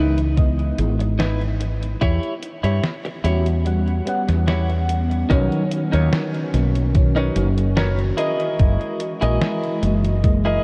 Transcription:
Already playing: C#2 E3 G#3 B3 D#4 E4 B4
0.18 closed hi-hat
0.37 E3 G#3 B3 D#5, muted clean electric guitar stroke, kick, closed hi-hat
0.59 closed hi-hat
0.78 G#1 E3 G#3 B3 D#4, closed hi-hat
0.99 muted clean electric guitar stroke, closed hi-hat
1.19 D#4 E4 B4, snare, closed hi-hat
1.41 closed hi-hat
1.60 muted clean electric guitar stroke, closed hi-hat
1.83 closed hi-hat
2.01 E2 E4 G4 C#5, kick, closed hi-hat
2.23 closed hi-hat
2.43 closed hi-hat
2.64 G2 E4 G4 C#5, closed hi-hat
2.84 snare, closed hi-hat
3.05 muted clean electric guitar stroke, closed hi-hat
3.24 E2 G3 B3 C#4 E4 F#4 G4 C#5, closed hi-hat
3.46 closed hi-hat
3.65 G3 B3 C#4 F#5, muted clean electric guitar stroke, closed hi-hat
3.88 closed hi-hat
4.05 G3 B3 C#4 F#5, closed hi-hat
4.28 E2, muted clean electric guitar stroke, snare, closed hi-hat
4.48 E4 G4 C#5, snare, closed hi-hat
4.70 closed hi-hat
4.89 muted clean electric guitar stroke, closed hi-hat
5.11 closed hi-hat
5.29 B1 D#3 F#3 C#4 D#4 F#4 A#4 B4 C#5, kick, closed hi-hat
5.52 closed hi-hat
5.72 closed hi-hat
5.92 D#2 D#4 A#4 B4 C#5, closed hi-hat
6.13 snare, closed hi-hat
6.34 closed hi-hat
6.54 B1 D#3 F#3 A#3 C#4, snare, closed hi-hat
6.75 closed hi-hat
6.95 D#3 F#3 C#4, kick, closed hi-hat
7.16 D#4 A#4 B4 C#5, closed hi-hat
7.35 F#1 D#3 F#3 A#3 C#4, closed hi-hat
7.58 closed hi-hat
7.77 D#4 A#4 B4 C#5, snare, closed hi-hat
7.99 closed hi-hat
8.17 E3 G#3 E4 G#4 A#4 D#5, closed hi-hat
8.40 closed hi-hat
8.59 F#1, kick, closed hi-hat
8.81 closed hi-hat
9.00 closed hi-hat
9.21 A#1 E4 G#4 A#4 D#5, closed hi-hat
9.41 snare, closed hi-hat
9.63 closed hi-hat
9.82 F#1 E3 G#3 A#3 D#4, closed hi-hat
10.04 closed hi-hat
10.23 E3 G#3 A#3 D#5, kick, closed hi-hat
10.45 E4 G#4 A#4 D#5, closed hi-hat

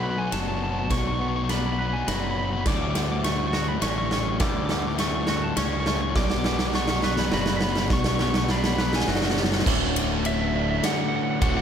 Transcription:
Already playing: B1 B2 F#3 A3 B3 D4 F#4
0.03 B2 F#3 B4 B5
0.10 B2 F#3 B5
0.18 B2 F#3 G#5
0.27 B2 F#3
0.31 F#1 F#3 F#4 D5 A5, snare, ride
0.36 B2
0.40 B2 F#3 A5
0.48 B2 F#3 A5
0.55 B2 F#3 A5
0.61 F#3 B3 C#5 A5
0.66 B2
0.70 B2 F#3 A5
0.79 B2 F#3 A5
0.84 A5
0.89 B1 B2 F#3 D5 C#6, kick, snare, ride
0.97 B2 F#3 C#6
1.05 B2 F#3 C#6
1.12 B2 F#3 C#6
1.19 B2 F#3 B3 F#5 C#6
1.28 B2 F#3 C#6
1.35 B2 F#3 C#6
1.42 B2 F#3 C#6
1.49 B2 F#3 D4 B5, snare, ride
1.57 B2 F#3 B5
1.66 B2 F#3 B5
1.72 B2 F#3 B5
1.79 B2 F#3 B4 B5
1.88 B2 F#3 B5
1.93 B2 F#3 G#5
2.04 F#1 B2 F#3 F#4 D5 B5, snare, ride
2.11 B2 F#3
2.16 B2 F#3 B5
2.23 B2 F#3 B5
2.31 B2 F#3 B5
2.37 B3 C#5 B5
2.43 B2 F#3 B5
2.49 B2 F#3 B5
2.57 B2 F#3
2.61 B5
2.65 D2 A2 C#4 D5 D6, kick, snare, crash
2.74 D2 A2 D6
2.81 D2 A2 D6
2.88 D2 A2 D6
2.95 D2 A2 D3 F#5 D6, snare, ride
3.03 D2 A2 D6
3.11 D2 A2 D6
3.18 D2 A2 D6
3.24 D2 A2 A3 C#6, snare, ride
3.32 D2 A2 C#6
3.38 D2 A2 C#6
3.47 D2 A2 C#6
3.53 D2 A2 F#4 C#6, snare
3.62 D2 A2 C#6
3.69 D2 A2 B5
3.79 A1 D2 A2 C#4 D5 C#6, snare, ride
3.87 D2 A2 C#6
3.93 D2 A2
3.98 D2 C#6
4.02 A2 C#6
4.09 D2 A2 D3 C#5 C#6, snare
4.17 D2 A2 C#6
4.24 D2 A2
4.29 D2 A2 C#6
4.40 D2 A2 E4 D5 D6, kick, snare, ride
4.47 D2 A2 D6
4.56 D2 A2 D6
4.63 D2 A2 D6
4.69 D2 A2 F#5 D6, snare
4.79 D2 A2 D6
4.87 D2 A2 D6
4.93 D2 A2
4.98 D2 A2 A3 C#6, snare, ride
5.08 D2 A2 C#6
5.15 D2 A2 C#6
5.23 D2 A2 C#6, snare
5.28 F#4 C#6
5.33 D2 A2
5.37 D2 A2 C#6
5.44 D2 A2 A5
5.55 C#2 D2 A2 C#4 D5 C#6, snare, ride
5.63 D2 A2 C#6
5.70 D2 A2 C#6
5.78 D2 A2 C#6
5.85 D2 A2 D3 C#5 C#6, snare
5.93 D2 A2 C#6
6.01 D2 A2 C#6
6.08 D2 A2 C#6
6.15 B1 B2 D3 F#3 A3 B3 F#4 D5 D6, kick, snare
6.23 B2 F#3 D6
6.30 B2 F#3 D6, snare
6.37 B2 F#3 D6
6.44 B2 F#3 B3 F#5 D6, snare
6.53 B2 F#3 D6
6.59 B2 F#3 D6, snare
6.68 B2 F#3 D6
6.74 B2 F#3 D4 C#6, snare
6.82 B2 F#3 C#6
6.88 B2 C#6, snare
6.92 F#3
6.97 B2 F#3 C#6
7.02 B2 F#3 B4 C#6, snare
7.13 B2 F#3 C#6
7.17 B2 B5, snare
7.22 F#3
7.29 F#1 B2 F#3 F#4 D5, snare
7.34 B2 F#3 B5
7.41 B2 F#3 B5
7.46 B5, snare
7.52 B2 F#3
7.57 B2 F#3 B5
7.61 B3 C#5 B5, snare
7.67 B2 F#3
7.72 B2 F#3 B5, snare
7.80 B2 F#3 B5
7.90 B1 B2 F#3 D5 C#6, kick, snare
7.98 B2 F#3 C#6
8.04 B2 F#3 C#6, snare
8.14 B2 F#3 C#6
8.19 B2 F#3 B3 F#5 C#6, snare
8.28 B2 F#3 C#6
8.34 B2 F#3 C#6, snare
8.43 B2 F#3 C#6
8.49 B2 F#3 D4 B5, snare
8.58 B2 F#3 B5
8.64 B2 B5, snare
8.68 F#3
8.73 B2 F#3 B5
8.78 B2 B4 B5, snare
8.83 F#3
8.88 B2 F#3 B5
8.93 B2 G#5, snare
8.97 F#3, snare
9.05 F#1 B2 F#3 F#4 D5, snare
9.10 B2 F#3 F#5
9.15 snare
9.20 B2 F#3, snare
9.28 B2 F#3, snare
9.35 B2 F#3 B3 C#5, snare
9.43 B2 F#3, snare
9.50 B2 F#3, snare
9.58 B2 F#3, snare
9.66 D1 D2 A2 D3 A3 C#4 F#4 A4 F#5 D6, kick, crash
9.96 ride
10.24 C#5 E5, ride
10.34 E5
10.41 E5
10.49 E5
10.53 D2 A2 D3 A3 C#4 F#4 D5 E5
10.63 E5
10.70 E5
10.78 E5
10.83 F#5 D6, snare, ride
10.93 F#5
11.01 F#5
11.08 F#5
11.16 F#5
11.23 F#5
11.31 F#5
11.41 D1 D2 A2 D3 A3 C#4 F#4 F#5 D6, kick, ride
11.50 F#5
11.57 F#5

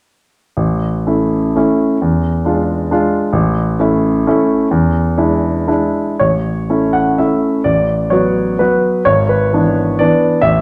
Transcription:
0.57 A1
1.07 A3 C#4 E4
1.56 A3 C#4 E4
2.02 E2
2.45 G#3 D4 F4
2.91 G#3 D4 F4
3.33 A1
3.79 A3 C#4 E4
4.27 A3 C#4 E4
4.71 E2
5.18 G#3 D4 E4
5.68 G#3 D4 E4
6.20 A1 C#5
6.70 A3 C#4 E4
6.93 F#5
7.18 A3 C#4 E4 E5
7.64 A1 D5
8.10 F#3 B3 F#4 C#5
8.59 F#3 B3 F#4 B4
9.05 G#1 C#5
9.29 B4
9.53 E3 B3 D4
9.99 E3 B3 D4 D5
10.42 A1 E5

